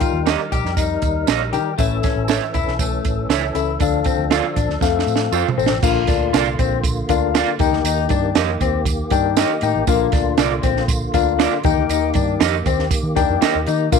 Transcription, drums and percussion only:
0.00 kick medium
0.00 closed hi-hat medium
0.00 tambourine soft
0.26 snare loud
0.26 closed hi-hat medium
0.26 tambourine medium
0.52 kick medium
0.52 closed hi-hat medium
0.52 tambourine soft
0.65 snare soft
0.77 kick medium
0.77 closed hi-hat medium
0.77 tambourine medium
1.02 kick medium
1.02 closed hi-hat medium
1.02 tambourine medium
1.27 snare loud
1.27 closed hi-hat medium
1.27 tambourine medium
1.53 closed hi-hat medium
1.53 tambourine medium
1.78 kick loud
1.78 closed hi-hat medium
1.78 tambourine loud
2.03 kick medium
2.03 snare soft
2.03 closed hi-hat medium
2.03 tambourine medium
2.28 snare loud
2.28 closed hi-hat medium
2.28 tambourine medium
2.54 kick medium
2.54 closed hi-hat medium
2.54 tambourine medium
2.68 snare soft
2.79 kick medium
2.79 closed hi-hat medium
2.79 tambourine medium
3.05 kick medium
3.05 closed hi-hat medium
3.05 tambourine medium
3.30 snare loud
3.30 closed hi-hat medium
3.30 tambourine medium
3.55 closed hi-hat medium
3.55 tambourine soft
3.80 kick loud
3.80 closed hi-hat medium
3.80 tambourine medium
4.04 kick medium
4.04 closed hi-hat medium
4.04 tambourine medium
4.31 snare loud
4.31 closed hi-hat medium
4.31 tambourine medium
4.56 kick medium
4.56 closed hi-hat medium
4.56 tambourine medium
4.70 snare soft
4.81 kick medium
4.81 snare medium
4.81 tambourine medium
4.99 snare medium
5.08 tambourine medium
5.16 snare medium
5.32 tambourine medium
5.49 floor tom medium
5.59 tambourine soft
5.66 snare medium
5.82 kick loud
5.82 crash medium
5.82 tambourine loud
6.07 kick loud
6.07 snare soft
6.07 closed hi-hat medium
6.07 tambourine medium
6.34 snare loud
6.34 closed hi-hat medium
6.34 tambourine medium
6.59 kick medium
6.59 closed hi-hat medium
6.59 tambourine medium
6.84 kick medium
6.84 closed hi-hat medium
6.84 tambourine medium
7.09 kick medium
7.09 closed hi-hat medium
7.09 tambourine medium
7.35 snare loud
7.35 closed hi-hat medium
7.35 tambourine medium
7.59 kick loud
7.59 closed hi-hat medium
7.59 tambourine medium
7.73 snare soft
7.85 closed hi-hat medium
7.85 tambourine loud
8.09 kick medium
8.09 closed hi-hat medium
8.09 tambourine medium
8.35 snare loud
8.35 closed hi-hat medium
8.35 tambourine medium
8.61 kick medium
8.61 closed hi-hat medium
8.61 tambourine medium
8.86 kick loud
8.86 closed hi-hat medium
8.86 tambourine medium
9.10 kick medium
9.10 closed hi-hat medium
9.10 tambourine medium
9.37 snare loud
9.37 closed hi-hat medium
9.37 tambourine medium
9.61 closed hi-hat medium
9.61 tambourine medium
9.87 kick loud
9.87 closed hi-hat medium
9.87 tambourine loud
10.12 kick loud
10.12 snare soft
10.12 closed hi-hat medium
10.12 tambourine medium
10.38 snare loud
10.38 closed hi-hat medium
10.38 tambourine medium
10.63 kick medium
10.63 closed hi-hat medium
10.63 tambourine medium
10.77 snare soft
10.88 kick loud
10.88 closed hi-hat loud
10.88 tambourine medium
11.14 kick medium
11.14 closed hi-hat medium
11.14 tambourine medium
11.39 snare loud
11.39 closed hi-hat medium
11.39 tambourine loud
11.63 kick loud
11.63 closed hi-hat medium
11.63 tambourine medium
11.89 closed hi-hat medium
11.89 tambourine loud
12.14 kick loud
12.14 closed hi-hat medium
12.14 tambourine medium
12.40 snare loud
12.40 closed hi-hat medium
12.40 tambourine medium
12.66 kick medium
12.66 closed hi-hat medium
12.66 tambourine medium
12.79 snare soft
12.91 kick loud
12.91 closed hi-hat medium
12.91 tambourine medium
13.16 kick medium
13.16 closed hi-hat medium
13.16 tambourine medium
13.42 snare loud
13.42 closed hi-hat medium
13.42 tambourine medium
13.66 closed hi-hat medium
13.66 tambourine medium
13.92 kick loud
13.92 closed hi-hat medium
13.92 tambourine loud

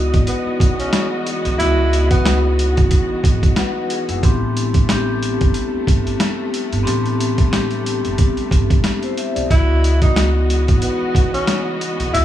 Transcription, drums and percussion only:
0.14 kick loud
0.14 closed hi-hat soft
0.27 closed hi-hat medium
0.60 kick loud
0.60 closed hi-hat medium
0.80 closed hi-hat soft
0.93 snare loud
0.93 closed hi-hat loud
1.27 closed hi-hat medium
1.45 closed hi-hat medium
1.60 closed hi-hat medium
1.93 closed hi-hat medium
2.11 kick medium
2.11 closed hi-hat medium
2.26 snare loud
2.26 closed hi-hat loud
2.59 closed hi-hat medium
2.77 kick loud
2.77 closed hi-hat soft
2.91 kick medium
2.91 closed hi-hat medium
3.24 kick loud
3.24 closed hi-hat medium
3.43 kick loud
3.43 closed hi-hat soft
3.56 snare loud
3.56 closed hi-hat loud
3.90 closed hi-hat medium
4.09 closed hi-hat medium
4.23 kick loud
4.23 closed hi-hat medium
4.57 closed hi-hat medium
4.74 kick medium
4.74 closed hi-hat medium
4.89 snare loud
4.89 closed hi-hat loud
5.23 closed hi-hat medium
5.41 kick loud
5.41 closed hi-hat medium
5.54 closed hi-hat medium
5.87 kick loud
5.87 closed hi-hat medium
6.07 closed hi-hat soft
6.20 snare loud
6.20 closed hi-hat loud
6.54 closed hi-hat medium
6.73 closed hi-hat medium
6.87 closed hi-hat medium
7.06 closed hi-hat soft
7.20 closed hi-hat medium
7.38 kick medium
7.38 closed hi-hat medium
7.53 snare loud
7.53 closed hi-hat loud
7.71 closed hi-hat soft
7.86 closed hi-hat medium
8.05 closed hi-hat soft
8.18 kick loud
8.18 closed hi-hat medium
8.37 closed hi-hat soft
8.51 kick loud
8.51 closed hi-hat medium
8.70 kick loud
8.70 closed hi-hat soft
8.84 snare loud
8.84 closed hi-hat loud
9.03 closed hi-hat soft
9.18 closed hi-hat medium
9.36 closed hi-hat medium
9.50 kick loud
9.50 closed hi-hat medium
9.84 closed hi-hat medium
10.02 kick medium
10.02 closed hi-hat medium
10.16 snare loud
10.16 closed hi-hat loud
10.50 closed hi-hat medium
10.68 kick loud
10.68 closed hi-hat medium
10.82 closed hi-hat medium
11.15 kick loud
11.15 closed hi-hat medium
11.34 closed hi-hat soft
11.47 snare loud
11.47 closed hi-hat loud
11.81 closed hi-hat medium
12.00 closed hi-hat medium
12.15 closed hi-hat loud

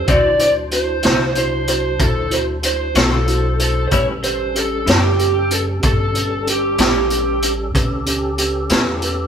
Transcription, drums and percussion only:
0.08 kick medium
0.08 closed hi-hat medium
0.39 closed hi-hat soft
0.71 closed hi-hat soft
1.03 snare medium
1.03 closed hi-hat medium
1.35 closed hi-hat medium
1.67 closed hi-hat medium
1.99 kick medium
1.99 closed hi-hat medium
2.31 closed hi-hat medium
2.63 closed hi-hat medium
2.95 snare medium
2.95 closed hi-hat medium
3.28 closed hi-hat soft
3.59 closed hi-hat soft
3.91 kick medium
3.91 closed hi-hat medium
4.23 closed hi-hat soft
4.55 closed hi-hat soft
4.87 snare medium
4.87 closed hi-hat medium
5.19 closed hi-hat soft
5.51 closed hi-hat soft
5.83 kick medium
5.83 closed hi-hat medium
6.15 closed hi-hat soft
6.47 closed hi-hat soft
6.78 snare medium
6.78 closed hi-hat medium
7.10 closed hi-hat medium
7.42 closed hi-hat medium
7.75 kick medium
7.75 closed hi-hat medium
8.06 closed hi-hat medium
8.38 closed hi-hat soft
8.69 snare medium
8.69 closed hi-hat medium
9.02 closed hi-hat medium

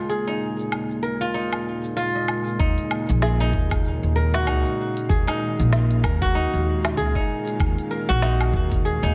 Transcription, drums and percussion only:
0.10 shaker soft
0.28 shaker soft
0.59 shaker medium
0.72 low woodblock medium
0.72 shaker soft
0.91 shaker soft
1.21 shaker medium
1.35 shaker soft
1.53 low woodblock medium
1.53 shaker soft
1.84 shaker medium
1.97 shaker soft
2.16 shaker soft
2.28 low woodblock medium
2.47 shaker medium
2.60 kick loud
2.60 shaker medium
2.78 open hi-hat soft
2.78 shaker soft
2.91 low woodblock medium
3.09 open hi-hat medium
3.09 shaker medium
3.22 snare medium
3.22 shaker medium
3.40 open hi-hat soft
3.40 shaker soft
3.53 kick medium
3.71 kick loud
3.71 open hi-hat medium
3.71 low woodblock medium
3.71 shaker medium
3.85 shaker medium
4.03 shaker soft
4.34 snare medium
4.34 open hi-hat medium
4.34 shaker medium
4.47 low woodblock medium
4.47 shaker medium
4.66 shaker soft
4.97 open hi-hat medium
4.97 shaker medium
5.10 kick loud
5.10 shaker medium
5.28 open hi-hat soft
5.28 low woodblock medium
5.28 shaker soft
5.60 open hi-hat medium
5.60 shaker medium
5.73 snare medium
5.73 shaker medium
5.91 open hi-hat soft
5.91 shaker soft
6.04 kick medium
6.04 low woodblock medium
6.22 kick loud
6.22 open hi-hat medium
6.22 shaker medium
6.36 shaker medium
6.54 shaker soft
6.85 snare medium
6.85 open hi-hat medium
6.85 low woodblock medium
6.85 shaker medium
6.98 shaker medium
7.15 kick medium
7.15 shaker soft
7.48 open hi-hat medium
7.48 shaker medium
7.60 kick loud
7.60 low woodblock medium
7.60 shaker medium
7.79 open hi-hat soft
7.79 shaker soft
8.09 open hi-hat medium
8.09 shaker medium
8.22 snare medium
8.22 shaker medium
8.41 open hi-hat soft
8.41 low woodblock medium
8.41 shaker soft
8.53 kick medium
8.72 kick loud
8.72 open hi-hat medium
8.72 shaker medium
8.86 shaker medium
9.04 shaker soft

